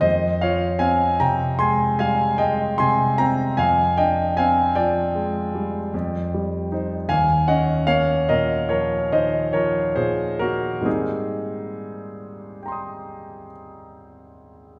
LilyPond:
<<
  \new Staff \with { instrumentName = "Grand piano" } { \time 9/8 \key aes \major \tempo 4. = 50 << { r1 r8 | r1 r8 | r1 r8 | r2 <g'' bes'' c''' ees'''>2~ <g'' bes'' c''' ees'''>8 | } \\ { <c'' ees''>8 <des'' f''>8 <f'' aes''>8 <g'' bes''>8 <aes'' c'''>8 <f'' aes''>8 <ees'' g''>8 <aes'' c'''>8 <g'' bes''>8 | <f'' aes''>8 <ees'' g''>8 <f'' aes''>8 <d'' g''>2~ <d'' g''>8 r8 | <f'' aes''>8 <ees'' ges''>8 <des'' f''>8 <bes' ees''>8 <bes' des''>8 <c'' ees''>8 <bes' des''>8 <aes' c''>8 <ges' bes'>8 | <ees' aes'>2. r4. | } >> }
  \new Staff \with { instrumentName = "Grand piano" } { \clef bass \time 9/8 \key aes \major f,8 f'8 c'8 c8 aes8 g8 aes8 c8 c'8 | f,8 d'8 c'8 f8 aes8 g8 f,8 g8 <ees' c''>8 | ees,8 des'8 bes8 bes,8 f8 ees8 f8 bes,8 bes8 | <aes, g bes c'>1~ <aes, g bes c'>8 | }
>>